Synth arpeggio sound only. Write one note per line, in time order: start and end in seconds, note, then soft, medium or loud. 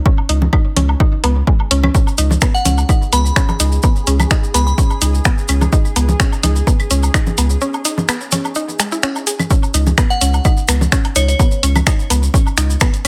0.06 0.09 C#4 medium
0.29 0.38 D#4 medium
0.53 0.62 D#4 medium
0.76 0.80 C#4 medium
1.00 1.09 D#4 medium
1.24 1.30 B3 loud
1.47 1.56 G#3 medium
1.71 1.77 C#4 medium
1.84 1.91 C#4 medium
1.95 1.98 C#4 medium
2.18 2.27 D#4 medium
2.42 2.48 B3 medium
2.65 2.69 C#4 medium
2.89 2.98 D#4 medium
3.13 3.19 B3 medium
3.36 3.40 C#4 medium
3.60 3.69 D#4 medium
3.84 3.89 B3 medium
4.07 4.11 C#4 medium
4.31 4.40 D#4 medium
4.54 4.60 B3 medium
4.78 4.82 C#4 medium
5.02 5.10 D#4 medium
5.25 5.31 B3 medium
5.49 5.52 C#4 medium
5.73 5.81 D#4 medium
5.96 6.02 B3 medium
6.20 6.23 C#4 medium
6.43 6.52 D#4 medium
6.67 6.73 B3 medium
6.91 6.94 C#4 medium
7.14 7.23 D#4 medium
7.38 7.44 B3 medium
7.62 7.65 C#4 medium
7.85 7.94 D#4 medium
8.09 8.15 B3 medium
8.32 8.36 C#4 medium
8.56 8.65 D#4 medium
8.79 8.83 G#3 medium
8.92 8.97 E4 medium
9.03 9.07 C#4 medium
9.27 9.33 G#4 medium
9.51 9.54 C#4 medium
9.74 9.83 D#4 medium
9.98 10.04 B3 medium
10.21 10.25 C#4 medium
10.45 10.54 D#4 medium
10.69 10.74 B3 medium
10.92 10.96 C#4 medium
11.16 11.25 D#4 medium
11.40 11.45 B3 medium
11.63 11.67 C#4 medium
11.87 11.95 D#4 medium
12.10 12.16 B3 medium
12.34 12.37 C#4 medium
12.58 12.66 D#4 medium
12.81 12.87 B3 medium